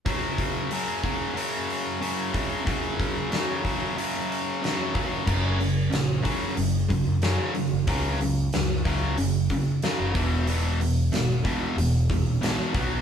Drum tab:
CC |--------|--------|x-------|--------|
HH |oooooooo|oooooooo|-ooooooo|oooooooo|
SD |--------|--o---o-|--o---o-|--o---o-|
BD |oo-o---o|oo-o---o|o--o-o--|o--o-o-o|

CC |--------|
HH |oooooooo|
SD |--o---o-|
BD |---o-o-o|